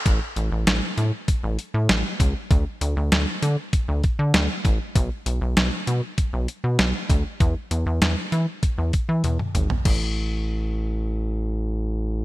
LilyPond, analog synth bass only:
\new Staff \with { instrumentName = "Analog synth bass" } { \clef bass \time 4/4 \key d \lydian \tempo 4 = 98 a,,16 r16 a,,16 a,,16 a,,16 r16 a,16 r8 a,,16 r16 a,16 a,,16 r16 cis,16 r16 | d,16 r16 d,16 d,16 d,16 r16 d16 r8 d,16 r16 d16 d,16 r16 a,,16 r16 | b,,16 r16 b,,16 b,,16 b,,16 r16 b,16 r8 b,,16 r16 b,16 b,,16 r16 d,16 r16 | e,16 r16 e,16 e,16 e,16 r16 e16 r8 e,16 r16 e16 e,16 r16 gis,,16 r16 |
a,,1 | }